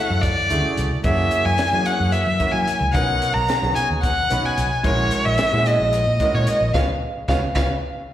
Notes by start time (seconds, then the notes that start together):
Already playing: A3 C#4 E4 F#4 A4 F#5
0.10 F#2
0.22 D5, kick, closed hi-hat
0.50 D2 C#3 A3 E4 F#4 G#4, closed hi-hat
0.65 muted fingered electric bass stroke
0.77 C#2, closed hi-hat
1.04 F#2 A#3 C#4 E4 F#4 G#4 E5, kick, closed hi-hat
1.31 closed hi-hat
1.45 F#2 G#5
1.58 snare, closed hi-hat
1.73 F#3 A#3 C#4 E4 F#4 G#4
1.86 F#5, closed hi-hat
2.00 F#2
2.12 E5, closed hi-hat
2.27 F#3
2.40 A#3 C#4 E4 F#4 A#4, muted fingered electric bass stroke, kick, closed hi-hat
2.52 F#3 G#5
2.68 closed hi-hat
2.81 C#2
2.92 B1 B3 C#4 D#4 F#4 A#4 F#5, kick, closed hi-hat
3.22 closed hi-hat
3.34 B1 A#5
3.49 snare, closed hi-hat
3.61 B1 B3 C#4 D#4 F#4 G#4
3.75 G#5, muted fingered electric bass stroke, closed hi-hat
3.90 D#2
4.02 F#5, kick, snare, closed hi-hat
4.30 B1 B3 C#4 D#4 F#4 B4, closed hi-hat
4.44 G#5, muted fingered electric bass stroke
4.58 B1, closed hi-hat
4.83 A#1 G#3 C#4 E4 F#4 A#4 C#5, kick, closed hi-hat
5.11 closed hi-hat
5.25 A#1 E5
5.38 snare, closed hi-hat
5.52 A#2 G#3 C#4 E4 F#4 G#4
5.66 D#5, closed hi-hat
5.80 A#1
5.93 closed hi-hat
6.07 A#2
6.20 G#3 C#4 E4 F#4 A#4, kick, snare, closed hi-hat
6.34 A#2 C#5
6.47 D#5, closed hi-hat
6.61 A#1
6.74 C#2 B3 C#4 F4 F5, kick, snare
7.28 C#2 B3 C#4 F4 F5, kick, snare
7.55 C#2 B3 C#4 F4 F5, kick, snare